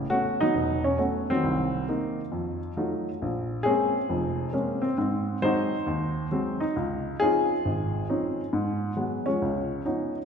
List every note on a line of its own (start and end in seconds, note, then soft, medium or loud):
0.10 0.41 A3 medium
0.10 0.41 B3 soft
0.10 0.42 C#4 soft
0.10 0.41 F#4 loud
0.41 1.26 F#3 medium
0.41 0.97 B3 medium
0.41 0.81 D#4 medium
0.55 0.93 E1 medium
0.84 0.97 C#4 medium
0.98 1.30 A3 soft
0.98 1.30 B3 soft
0.98 1.30 C#4 soft
0.98 1.31 F#4 medium
1.30 2.59 D#3 medium
1.30 2.59 F#3 medium
1.30 1.88 C4 medium
1.44 1.82 C2 medium
1.89 2.20 A#3 soft
1.89 2.20 C4 soft
1.89 2.20 D#4 medium
2.32 2.71 F2 medium
2.77 3.08 F#3 soft
2.77 3.08 A3 soft
2.77 3.08 D#4 soft
2.77 3.08 F4 soft
3.22 3.60 A#1 medium
3.63 3.97 G#3 soft
3.63 3.97 A#3 soft
3.63 4.53 C4 medium
3.63 4.52 C#4 medium
3.63 4.79 G#4 loud
4.09 4.48 F1 medium
4.09 4.48 F2 medium
4.53 4.85 G#3 soft
4.53 4.85 A#3 soft
4.53 4.80 C4 soft
4.53 4.85 C#4 medium
4.82 4.96 C4 medium
4.98 5.37 G#2 medium
4.98 5.37 C4 medium
5.42 5.74 F#3 soft
5.42 5.74 G#3 soft
5.42 5.74 C4 medium
5.42 6.58 D#4 medium
5.42 6.58 F#4 medium
5.42 6.64 C5 medium
5.86 6.25 D#2 medium
6.31 6.63 F#3 medium
6.31 6.63 G#3 soft
6.31 6.63 C4 medium
6.60 6.74 D#4 medium
6.76 7.14 C#2 medium
7.20 7.52 F3 soft
7.20 7.52 C4 soft
7.20 7.52 C#4 soft
7.20 7.52 D#4 medium
7.20 9.24 F4 medium
7.20 9.23 G#4 loud
7.65 8.03 G#1 medium
8.09 8.40 F3 medium
8.09 8.40 C4 soft
8.09 8.40 C#4 soft
8.09 8.40 D#4 medium
8.53 8.91 G#2 medium
8.97 9.28 F#3 soft
8.97 9.26 G#3 soft
8.97 9.28 B3 medium
9.26 9.84 F3 medium
9.26 10.12 G#3 medium
9.26 9.84 C#4 medium
9.42 9.80 C#2 medium
9.85 10.17 F3 soft
9.85 10.17 B3 soft
9.85 10.17 C#4 soft
9.85 10.17 D#4 medium